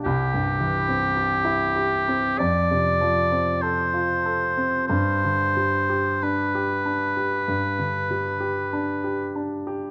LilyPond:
<<
  \new Staff \with { instrumentName = "Oboe" } { \time 4/4 \key g \mixolydian \tempo 4 = 48 g'2 d''4 c''4 | c''4 b'2~ b'8 r8 | }
  \new Staff \with { instrumentName = "Grand piano" } { \time 4/4 \key g \mixolydian c,16 g,16 e16 c'16 g'16 e'16 g'16 c'16 f,16 c16 f16 c'16 a'16 f'16 a'16 c'16 | g,16 d16 g16 g'16 d'16 g'16 d'16 g'16 g,16 d16 g16 g'16 d'16 g'16 d'16 g'16 | }
>>